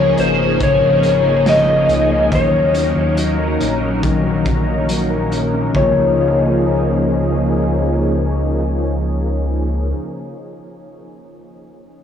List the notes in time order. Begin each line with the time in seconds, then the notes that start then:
Already playing: C#2 C#3 F3 A#3 C#4 D#4 G#4 A#4 C#5
0.18 G#1 D#4 C5, closed hi-hat
0.39 A#3
0.60 C#3 C#5, kick, closed hi-hat
0.82 D#4
1.03 A#3, closed hi-hat
1.24 D#4
1.46 F3 D#5, snare, closed hi-hat
1.67 A#4
1.89 C#2 D#4, closed hi-hat
2.10 A#3
2.32 D#2 D#3 F#3 A#4 C#5, kick, closed hi-hat
2.53 D#4
2.74 C#4, closed hi-hat
2.96 D#2 D#4
3.17 F#3, closed hi-hat
3.39 A#4
3.60 A#1 D#4, closed hi-hat
3.82 C#4
4.03 D#3, kick, closed hi-hat
4.24 D#4
4.45 C#4, kick, closed hi-hat
4.67 D#4
4.89 F#3, closed hi-hat
5.10 A#4
5.32 D#4, closed hi-hat
5.53 C#4
5.72 C#2 C#3 F3 A#3 C#4 D#4 G#4, kick
5.76 A#3 D#4 A#4 C#5